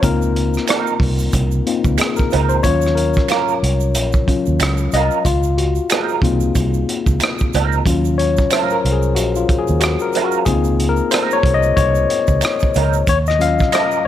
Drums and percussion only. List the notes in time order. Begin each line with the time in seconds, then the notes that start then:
0.03 kick, closed hi-hat, shaker
0.22 shaker
0.36 closed hi-hat
0.54 cross-stick, shaker
0.68 finger snap, cross-stick, closed hi-hat, shaker
0.87 shaker
1.00 kick, open hi-hat
1.19 shaker
1.33 kick, closed hi-hat, shaker
1.51 shaker
1.67 closed hi-hat
1.84 kick, shaker
1.98 finger snap, cross-stick, closed hi-hat, shaker
2.16 kick, shaker
2.31 closed hi-hat, shaker
2.49 shaker
2.63 kick, closed hi-hat, shaker
2.81 shaker
2.87 cross-stick
2.97 closed hi-hat
3.14 kick, shaker
3.18 cross-stick
3.28 finger snap, cross-stick, closed hi-hat, shaker
3.48 shaker
3.64 closed hi-hat
3.80 shaker
3.95 closed hi-hat, shaker
4.12 kick, shaker
4.28 kick, closed hi-hat
4.46 shaker
4.60 finger snap, cross-stick, closed hi-hat, shaker
4.77 shaker
4.92 closed hi-hat, shaker
5.11 shaker
5.25 kick, closed hi-hat, shaker
5.43 shaker
5.58 closed hi-hat
5.75 shaker
5.90 finger snap, cross-stick, closed hi-hat, shaker
6.09 shaker
6.22 kick, closed hi-hat
6.40 shaker
6.55 kick, closed hi-hat, shaker
6.74 shaker
6.89 closed hi-hat
7.06 kick, shaker
7.20 finger snap, cross-stick, closed hi-hat, shaker
7.39 kick, shaker
7.53 closed hi-hat, shaker
7.72 shaker
7.86 kick, closed hi-hat, shaker
8.05 shaker
8.19 closed hi-hat
8.37 kick, shaker
8.51 finger snap, cross-stick, closed hi-hat, shaker
8.70 shaker
8.85 closed hi-hat
9.02 shaker
9.16 closed hi-hat, shaker
9.35 shaker
9.49 kick, closed hi-hat
9.68 shaker
9.81 finger snap, cross-stick, closed hi-hat, shaker
9.99 shaker
10.13 closed hi-hat, shaker
10.32 shaker
10.46 kick, closed hi-hat, shaker
10.64 shaker
10.80 closed hi-hat
10.96 shaker
11.11 finger snap, cross-stick, closed hi-hat, shaker
11.31 shaker
11.43 kick, closed hi-hat
11.63 shaker
11.77 kick, closed hi-hat, shaker
11.95 shaker
12.10 closed hi-hat
12.27 kick, shaker
12.41 finger snap, cross-stick, closed hi-hat, shaker
12.60 kick, shaker
12.74 closed hi-hat, shaker
12.93 shaker
13.07 kick, closed hi-hat, shaker
13.26 cross-stick, shaker
13.41 closed hi-hat, shaker
13.59 kick, cross-stick, shaker
13.72 finger snap, cross-stick, closed hi-hat, shaker
13.91 shaker